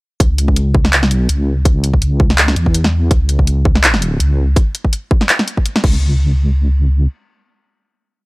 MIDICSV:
0, 0, Header, 1, 3, 480
1, 0, Start_track
1, 0, Key_signature, 4, "minor"
1, 0, Tempo, 363636
1, 265, Time_signature, 4, 2, 24, 8
1, 10895, End_track
2, 0, Start_track
2, 0, Title_t, "Wobble bass"
2, 0, Program_c, 0, 39
2, 264, Note_on_c, 0, 37, 95
2, 1267, Note_off_c, 0, 37, 0
2, 1267, Note_on_c, 0, 36, 95
2, 1688, Note_off_c, 0, 36, 0
2, 1703, Note_on_c, 0, 37, 102
2, 2647, Note_off_c, 0, 37, 0
2, 2662, Note_on_c, 0, 37, 95
2, 3367, Note_off_c, 0, 37, 0
2, 3378, Note_on_c, 0, 40, 96
2, 4085, Note_off_c, 0, 40, 0
2, 4102, Note_on_c, 0, 37, 94
2, 5527, Note_off_c, 0, 37, 0
2, 5543, Note_on_c, 0, 37, 98
2, 6007, Note_off_c, 0, 37, 0
2, 7706, Note_on_c, 0, 37, 101
2, 9333, Note_off_c, 0, 37, 0
2, 10895, End_track
3, 0, Start_track
3, 0, Title_t, "Drums"
3, 265, Note_on_c, 9, 36, 127
3, 267, Note_on_c, 9, 42, 77
3, 397, Note_off_c, 9, 36, 0
3, 399, Note_off_c, 9, 42, 0
3, 506, Note_on_c, 9, 42, 71
3, 637, Note_on_c, 9, 36, 58
3, 638, Note_off_c, 9, 42, 0
3, 744, Note_on_c, 9, 42, 83
3, 769, Note_off_c, 9, 36, 0
3, 876, Note_off_c, 9, 42, 0
3, 984, Note_on_c, 9, 36, 106
3, 1116, Note_off_c, 9, 36, 0
3, 1118, Note_on_c, 9, 38, 64
3, 1228, Note_on_c, 9, 39, 123
3, 1228, Note_on_c, 9, 42, 85
3, 1250, Note_off_c, 9, 38, 0
3, 1358, Note_on_c, 9, 38, 82
3, 1360, Note_off_c, 9, 39, 0
3, 1360, Note_off_c, 9, 42, 0
3, 1465, Note_on_c, 9, 42, 71
3, 1490, Note_off_c, 9, 38, 0
3, 1597, Note_off_c, 9, 42, 0
3, 1704, Note_on_c, 9, 42, 82
3, 1836, Note_off_c, 9, 42, 0
3, 2183, Note_on_c, 9, 36, 125
3, 2184, Note_on_c, 9, 42, 78
3, 2315, Note_off_c, 9, 36, 0
3, 2316, Note_off_c, 9, 42, 0
3, 2425, Note_on_c, 9, 42, 70
3, 2555, Note_on_c, 9, 36, 62
3, 2557, Note_off_c, 9, 42, 0
3, 2664, Note_on_c, 9, 42, 86
3, 2687, Note_off_c, 9, 36, 0
3, 2796, Note_off_c, 9, 42, 0
3, 2903, Note_on_c, 9, 36, 108
3, 3035, Note_off_c, 9, 36, 0
3, 3037, Note_on_c, 9, 38, 65
3, 3144, Note_on_c, 9, 39, 127
3, 3144, Note_on_c, 9, 42, 88
3, 3169, Note_off_c, 9, 38, 0
3, 3276, Note_off_c, 9, 39, 0
3, 3276, Note_off_c, 9, 42, 0
3, 3277, Note_on_c, 9, 38, 79
3, 3384, Note_on_c, 9, 42, 67
3, 3409, Note_off_c, 9, 38, 0
3, 3515, Note_on_c, 9, 36, 62
3, 3516, Note_off_c, 9, 42, 0
3, 3623, Note_on_c, 9, 42, 84
3, 3647, Note_off_c, 9, 36, 0
3, 3754, Note_on_c, 9, 38, 82
3, 3755, Note_off_c, 9, 42, 0
3, 3886, Note_off_c, 9, 38, 0
3, 4103, Note_on_c, 9, 36, 127
3, 4103, Note_on_c, 9, 42, 83
3, 4235, Note_off_c, 9, 36, 0
3, 4235, Note_off_c, 9, 42, 0
3, 4342, Note_on_c, 9, 42, 66
3, 4474, Note_off_c, 9, 42, 0
3, 4475, Note_on_c, 9, 36, 63
3, 4585, Note_on_c, 9, 42, 85
3, 4607, Note_off_c, 9, 36, 0
3, 4717, Note_off_c, 9, 42, 0
3, 4823, Note_on_c, 9, 36, 113
3, 4955, Note_off_c, 9, 36, 0
3, 4956, Note_on_c, 9, 38, 62
3, 5065, Note_on_c, 9, 39, 127
3, 5065, Note_on_c, 9, 42, 84
3, 5088, Note_off_c, 9, 38, 0
3, 5197, Note_off_c, 9, 39, 0
3, 5197, Note_off_c, 9, 42, 0
3, 5198, Note_on_c, 9, 38, 78
3, 5307, Note_on_c, 9, 42, 70
3, 5330, Note_off_c, 9, 38, 0
3, 5439, Note_off_c, 9, 42, 0
3, 5546, Note_on_c, 9, 42, 82
3, 5678, Note_off_c, 9, 42, 0
3, 6023, Note_on_c, 9, 36, 127
3, 6027, Note_on_c, 9, 42, 77
3, 6155, Note_off_c, 9, 36, 0
3, 6159, Note_off_c, 9, 42, 0
3, 6266, Note_on_c, 9, 42, 68
3, 6396, Note_on_c, 9, 36, 60
3, 6398, Note_off_c, 9, 42, 0
3, 6505, Note_on_c, 9, 42, 82
3, 6528, Note_off_c, 9, 36, 0
3, 6637, Note_off_c, 9, 42, 0
3, 6744, Note_on_c, 9, 36, 110
3, 6876, Note_off_c, 9, 36, 0
3, 6877, Note_on_c, 9, 38, 60
3, 6984, Note_on_c, 9, 39, 127
3, 6984, Note_on_c, 9, 42, 80
3, 7009, Note_off_c, 9, 38, 0
3, 7116, Note_off_c, 9, 39, 0
3, 7116, Note_off_c, 9, 42, 0
3, 7119, Note_on_c, 9, 38, 76
3, 7228, Note_on_c, 9, 42, 68
3, 7251, Note_off_c, 9, 38, 0
3, 7358, Note_on_c, 9, 36, 62
3, 7360, Note_off_c, 9, 42, 0
3, 7466, Note_on_c, 9, 42, 80
3, 7490, Note_off_c, 9, 36, 0
3, 7598, Note_off_c, 9, 42, 0
3, 7599, Note_on_c, 9, 38, 78
3, 7706, Note_on_c, 9, 36, 114
3, 7706, Note_on_c, 9, 49, 90
3, 7731, Note_off_c, 9, 38, 0
3, 7838, Note_off_c, 9, 36, 0
3, 7838, Note_off_c, 9, 49, 0
3, 10895, End_track
0, 0, End_of_file